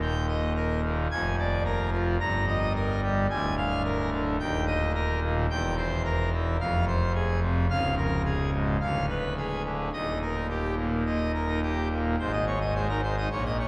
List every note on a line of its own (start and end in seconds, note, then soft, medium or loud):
0.00 1.07 D#1 medium
0.00 1.07 D#2 medium
0.00 0.14 A#2 medium
0.00 0.26 G5 medium
0.28 0.53 D#5 medium
0.56 0.81 A#4 medium
0.84 1.07 A#2 medium
1.11 2.17 F1 medium
1.11 2.17 F2 loud
1.11 1.36 G#5 loud
1.39 1.63 D5 medium
1.65 1.90 A#4 medium
1.92 2.16 F3 medium
2.20 3.27 G1 medium
2.20 3.27 G2 medium
2.20 2.45 A#5 loud
2.48 2.73 D#5 medium
2.75 3.00 A#4 medium
3.03 3.26 G3 medium
3.30 4.37 D1 loud
3.30 4.37 D2 loud
3.30 3.55 G#5 loud
3.57 3.82 F5 medium
3.85 4.10 A#4 medium
4.13 4.36 D3 medium
4.39 5.47 D#1 medium
4.39 5.47 D#2 loud
4.39 4.64 G5 loud
4.67 4.92 D#5 medium
4.95 5.20 A#4 medium
5.22 5.46 A#2 medium
5.50 6.57 E1 loud
5.50 6.57 E2 loud
5.50 5.75 G5 loud
5.77 6.02 C5 medium
6.05 6.30 A#4 medium
6.33 6.57 E3 medium
6.60 7.67 F1 medium
6.60 7.67 F2 loud
6.60 6.85 F5 loud
6.87 7.12 C5 medium
7.15 7.40 G#4 medium
7.42 7.66 C3 medium
7.70 8.77 C#1 medium
7.70 8.77 C#2 loud
7.70 7.95 F5 loud
7.97 8.22 A#4 medium
8.25 8.50 G#4 medium
8.53 8.76 G#2 medium
8.81 9.89 D1 medium
8.81 9.89 D2 medium
8.81 9.06 F5 medium
9.09 9.34 B4 medium
9.38 9.62 G#4 medium
9.65 9.89 D3 medium
9.93 12.15 D#1 medium
9.93 12.15 D#2 medium
9.93 10.18 D#5 medium
10.22 10.46 A#4 medium
10.35 10.48 D#4 medium
10.50 10.75 G4 medium
10.78 11.03 A#2 medium
11.07 11.19 A#2 medium
11.07 11.31 D#5 medium
11.34 11.59 A#4 medium
11.48 11.61 D#4 medium
11.63 11.88 G4 medium
11.92 12.15 A#2 medium
12.19 13.27 G#1 medium
12.19 13.27 G#2 medium
12.19 12.32 C5 medium
12.33 12.45 D#5 loud
12.47 12.59 C#5 medium
12.61 12.74 D#5 medium
12.75 12.88 G#3 medium
12.75 12.88 C5 medium
12.89 13.01 D#4 medium
12.89 13.01 A#4 medium
13.03 13.15 C5 medium
13.18 13.29 D#4 medium
13.18 13.29 D#5 medium
13.32 13.68 A#1 medium
13.32 13.68 A#2 medium
13.32 13.43 C#5 medium
13.45 13.57 D#5 medium
13.59 13.68 C#5 medium